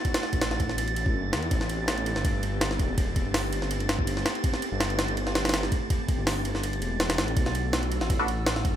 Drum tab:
RD |x-x---x-x---x---x-x-x-------x-x-|x---x---x-x-x---x---x---x---x---|x---x-------x---x-x-x---x---x-x-|x---x---x-x-x-x-x---x-xxx---x---|
HH |--------------------------------|--------------------------------|--------o-----------------------|--------------------------------|
SD |--o-o---o-o---o-------------o---|--o-----o-----o---------o-o-----|--------o-----o-----o-----o-o---|--o-----o---o-----o-o-ooo-o-----|
BD |o-----o-----o---------o---------|o---------------o-----------o---|o---o-----------------o---------|o---------------------------o---|

RD |x---x-------x---x-x-x---x-x-x-x-|x---x---x-x-x---x---x---x---x---|
HH |--------o-----------------------|--------------------------------|
SD |--------o-----o---------o-o-o---|--o-----o-----o---------o-o-----|
BD |o---o---------------------------|o---------------o-----------o---|